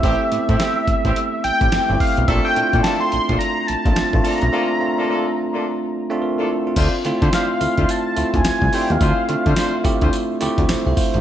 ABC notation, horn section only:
X:1
M:4/4
L:1/16
Q:"Swing 16ths" 1/4=107
K:Dm
V:1 name="Horn section"
[A,CEG] z2 [A,CEG] [A,CEG] z2 [A,CEG] z8 | [B,DFA] z2 [B,DFA] [B,DFA] z2 [B,DFA] z6 [B,DFA] z | [B,DFA] z2 [B,DFA] [B,DFA] z2 [B,DFA] z4 z [B,DFA] z2 | [DEFc] z2 [DEFc] [DEFc] z2 [DEFc] z6 [DEFc] z |
[DEFc] z2 [DEFc] [DEFc] z2 [DEFc] z8 |]